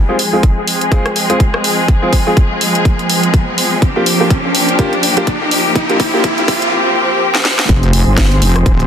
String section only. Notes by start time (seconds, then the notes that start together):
Already playing: F3 G#3 C4 G#4
3.82 A#3 D4 G4
5.76 C4
7.69 C4 G#4